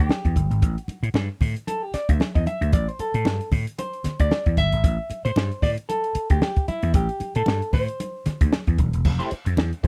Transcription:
0.00 clean electric guitar G4
0.09 snare, high conga
0.25 slap bass E2, kick, closed hi-hat
0.36 slap bass G1, kick, closed hi-hat, high conga
0.50 slap bass G#1, closed hi-hat
0.62 slap bass A1, kick, closed hi-hat, muted conga
0.78 clean electric guitar F#4, closed hi-hat
0.88 muted slap bass stroke, closed hi-hat, muted conga
1.03 slap bass A2, closed hi-hat
1.14 slap bass G2, snare, high conga
1.41 slap bass A2, kick, open hi-hat, low conga
1.56 closed hi-hat
1.67 clean electric guitar A4, closed hi-hat, muted conga
1.82 clean electric guitar G4
1.94 clean electric guitar D5, muted slap bass stroke, snare, closed hi-hat
2.09 slap bass D2, clean electric guitar E5, kick, closed hi-hat
2.20 snare, high conga
2.35 slap bass E2, clean electric guitar D#5, kick, closed hi-hat
2.46 clean electric guitar E5, closed hi-hat, high conga
2.61 slap bass D2, closed hi-hat
2.73 slap bass A1, clean electric guitar D5, kick, closed hi-hat, muted conga
2.88 clean electric guitar C5, closed hi-hat
2.99 clean electric guitar A4, muted slap bass stroke, closed hi-hat, muted conga
3.14 slap bass A2, closed hi-hat
3.25 slap bass G2, snare, high conga
3.41 closed hi-hat
3.52 slap bass A2, kick, open hi-hat, low conga
3.67 closed hi-hat
3.79 clean electric guitar C5, closed hi-hat, muted conga
3.93 closed hi-hat
4.04 muted slap bass stroke, snare, closed hi-hat, low conga
4.19 slap bass D2, clean electric guitar D5, kick, closed hi-hat
4.31 snare, high conga
4.46 slap bass E2, kick, closed hi-hat
4.57 slap bass G1, clean electric guitar E5, kick, closed hi-hat, high conga
4.72 slap bass G#1, closed hi-hat
4.84 slap bass A1, kick, closed hi-hat, muted conga
5.10 muted slap bass stroke, closed hi-hat, muted conga
5.25 slap bass A2, clean electric guitar C5, closed hi-hat
5.36 slap bass G2, snare, high conga
5.51 closed hi-hat
5.62 slap bass A2, clean electric guitar D5, kick, open hi-hat, low conga
5.78 closed hi-hat
5.89 clean electric guitar A4, closed hi-hat, muted conga
6.04 closed hi-hat
6.15 muted slap bass stroke, closed hi-hat
6.30 slap bass D2, clean electric guitar G4, kick, closed hi-hat
6.42 clean electric guitar G4, snare, high conga
6.56 kick, closed hi-hat
6.68 clean electric guitar E4, muted slap bass stroke, closed hi-hat, high conga
6.82 slap bass E2, closed hi-hat
6.94 slap bass A1, clean electric guitar G4, kick, closed hi-hat, muted conga
7.09 closed hi-hat
7.20 muted slap bass stroke, closed hi-hat, muted conga
7.35 slap bass A2, clean electric guitar A4, closed hi-hat
7.46 slap bass G2, snare, high conga
7.62 closed hi-hat
7.73 slap bass A2, clean electric guitar C5, kick, open hi-hat, low conga
7.88 closed hi-hat
8.00 closed hi-hat, muted conga
8.26 muted slap bass stroke, snare, closed hi-hat, low conga
8.41 slap bass D2, kick, closed hi-hat
8.53 snare, high conga
8.67 slap bass E2, kick, closed hi-hat
8.78 slap bass D#1, kick, closed hi-hat, high conga
8.93 slap bass E1, closed hi-hat
9.05 slap bass F1, muted clean electric guitar stroke, kick, crash, muted conga
9.19 clean electric guitar A3 E4 G4 C5, closed hi-hat
9.31 muted clean electric guitar stroke, muted slap bass stroke, closed hi-hat
9.45 slap bass F2, muted clean electric guitar stroke, closed hi-hat
9.57 slap bass E2, muted clean electric guitar stroke, snare, high conga
9.73 closed hi-hat
9.83 slap bass F2, clean electric guitar A3 E4 G4, kick

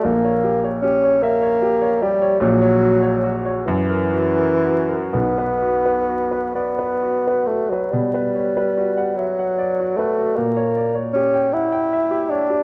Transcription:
0.04 grand piano A#1 A#2, bassoon A#3
0.25 grand piano C#5
0.44 grand piano G4
0.64 grand piano C#5
0.82 bassoon C#4, grand piano G4
1.04 grand piano C#5
1.23 bassoon A#3, grand piano E5
1.42 grand piano C#5
1.62 grand piano G4
1.82 grand piano C#5
2.02 bassoon G3, grand piano G4
2.22 grand piano C#5
2.40 grand piano A#1 A#2, bassoon F#3
2.62 grand piano C#5
2.83 grand piano F#4
3.03 grand piano C#5
3.24 grand piano F#4
3.45 grand piano C#5
3.66 grand piano F#2, bassoon E3
3.90 grand piano A#4
4.13 grand piano F#4
4.38 grand piano A#4
4.64 grand piano F#4
4.89 grand piano A#4
5.13 grand piano B1 B2, bassoon B3
5.38 grand piano B4
5.62 grand piano F#4
5.86 grand piano B4
6.09 grand piano F#4
6.31 grand piano B4
6.55 bassoon B3, grand piano D5
6.79 grand piano B4
7.03 grand piano F#4
7.27 grand piano B4
7.47 bassoon A3, grand piano F#4
7.70 bassoon F#3, grand piano B4
7.91 grand piano B2, bassoon G3
8.14 grand piano B4
8.35 grand piano C#5
8.57 grand piano B4
8.77 grand piano F#4
8.97 grand piano F#5
9.16 bassoon F#3, grand piano E5
9.39 grand piano F#5
9.58 grand piano D5
9.80 grand piano F#4
9.97 bassoon A3, grand piano B4
10.18 grand piano F#4
10.36 grand piano A#2, bassoon A#3
10.57 grand piano C#5
10.76 grand piano D5
10.95 grand piano C#5
11.13 bassoon C#4, grand piano G4
11.34 grand piano G5
11.53 bassoon E4, grand piano F#5
11.72 grand piano G5
11.93 grand piano E5
12.11 grand piano G4
12.30 bassoon D4, grand piano C#5
12.50 grand piano G4

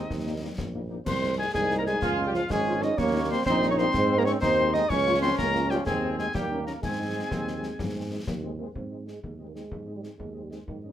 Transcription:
Already playing: euphonium D#3, trombone section C4, cornet D#4, piccolo D#5
0.10 tuba D#2, concert bass drum, snare
0.26 french horn section G3 A#3 D#4
0.42 french horn section G3 A#3 D#4
0.58 tuba A#1, concert bass drum, snare
0.75 french horn section G3 A#3 D#4
0.90 french horn section G3 A#3 D#4
1.06 tuba C2, euphonium C4, cornet C5, piccolo C6, concert bass drum, snare, crash
1.22 french horn section G#3 D#4
1.38 euphonium G#3, french horn section G#3 D#4, cornet G#4, piccolo G#5
1.54 tuba C2, euphonium G#3, trombone section D#4, cornet G#4, piccolo G#5, concert bass drum, snare
1.70 french horn section G#3 D#4, snare
1.78 euphonium A#3, cornet A#4, piccolo A#5
1.85 french horn section G#3 D#4, euphonium G#3, cornet G#4, piccolo G#5, snare
2.02 tuba C#2, trombone section F4, concert bass drum, snare
2.17 french horn section G#3 C#4 F4
2.26 euphonium G3, cornet G4, piccolo G5
2.33 euphonium F3, french horn section G#3 C#4 F4, cornet F4, piccolo F5, snare
2.49 tuba G#1, euphonium G#3, trombone section C#4, cornet G#4, piccolo G#5, concert bass drum, snare
2.66 french horn section G#3 C#4 F4
2.81 french horn section G#3 C#4 F4, euphonium D#4, cornet D#5, piccolo D#6, snare
2.97 tuba D#2, trombone section A#3, euphonium C#4, cornet C#5, piccolo C#6, concert bass drum, snare, crash
3.14 french horn section G3 A#3 D#4
3.30 french horn section G3 A#3 D#4, euphonium C4, cornet C5, piccolo C6
3.45 tuba A#1, euphonium C4, trombone section D#4, cornet C5, piccolo C6, concert bass drum, snare
3.62 french horn section G3 A#3 D#4, snare
3.70 euphonium C#4, cornet C#5, piccolo C#6
3.78 french horn section G3 A#3 D#4, euphonium C4, cornet C5, piccolo C6, snare
3.94 tuba G#2, trombone section C4, concert bass drum, snare
4.10 french horn section G#3 C4 D#4
4.18 euphonium A#3, cornet A#4, piccolo A#5
4.25 french horn section G#3 C4 D#4, euphonium C#4, cornet C#5, piccolo C#6, snare
4.41 tuba D#2, euphonium C4, trombone section D#4, cornet C5, piccolo C6, concert bass drum, snare
4.58 french horn section G#3 C4 D#4
4.73 french horn section G#3 C4 D#4, euphonium D#4, cornet D#5, piccolo D#6, snare
4.89 tuba C#2, trombone section C#4, euphonium C#4, cornet C#5, piccolo C#6, concert bass drum, snare, crash
5.06 french horn section F3 A#3 F4
5.22 french horn section F3 A#3 F4, euphonium C4, cornet C5, piccolo C6
5.38 tuba C#2, euphonium A#3, cornet A#4, piccolo A#5, concert bass drum, snare
5.55 french horn section F3 A#3 F4, snare
5.70 french horn section F3 A#3 F4, euphonium G3, cornet G4, piccolo G5, snare
5.86 tuba D#2, euphonium G#3, trombone section C4, cornet G#4, piccolo G#5, concert bass drum, snare
6.03 french horn section G#3 C4 D#4
6.18 euphonium G#3, french horn section G#3 C4 D#4, cornet G#4, piccolo G#5, snare
6.34 tuba D#2, euphonium G3, trombone section A#3, cornet G4, piccolo G5, concert bass drum, snare
6.51 french horn section A#3 C#4 D#4
6.66 french horn section A#3 C#4 D#4, euphonium A#3, cornet A#4, piccolo A#5, snare
6.82 tuba G#2, euphonium G#3, trombone section C4, cornet G#4, piccolo G#5, concert bass drum, snare, crash
6.99 french horn section G#3 C4 D#4
7.15 french horn section G#3 C4 D#4
7.31 tuba D#2, concert bass drum, snare
7.47 french horn section G#3 C4 D#4, snare
7.62 french horn section G#3 C4 D#4, snare
7.79 tuba G#2, concert bass drum, snare
7.95 french horn section G#3 C4 D#4
8.10 french horn section G#3 C4 D#4
8.27 tuba D#2, concert bass drum, snare
8.43 french horn section G#3 C4 D#4
8.58 french horn section G#3 C4 D#4, euphonium A#3
8.75 tuba G#2, euphonium C4, concert bass drum
8.91 french horn section G#3 C4 D#4, cornet D#5
9.07 french horn section G#3 C4 D#4, euphonium G#3, cornet D#5, snare
9.23 tuba D#2, euphonium G#3, concert bass drum
9.38 french horn section G#3 C4 D#4, cornet D#5
9.48 euphonium A#3
9.55 euphonium G#3, french horn section G#3 C4 D#4, cornet D#5, snare
9.71 tuba G#2, concert bass drum
9.86 french horn section G#3 C4 D#4, cornet D#5
9.96 euphonium G3
10.02 euphonium G#3, french horn section G#3 C4 D#4, cornet D#5, snare
10.19 tuba D#2, euphonium G#3, concert bass drum
10.33 french horn section G#3 C4 D#4, cornet D#5
10.44 euphonium G3
10.50 euphonium G#3, french horn section G#3 C4 D#4, cornet D#5, snare
10.67 tuba G#2, euphonium D#3, concert bass drum
10.83 french horn section G3 C#4 D#4, cornet D#5

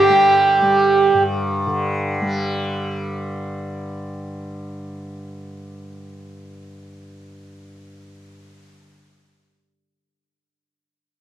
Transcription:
Already playing: tanpura G2 D3 G3, violin G4, harmonium G4
0.09 tanpura G3
0.62 tanpura G3
1.14 tanpura G2
1.67 tanpura D3
2.21 tanpura G3

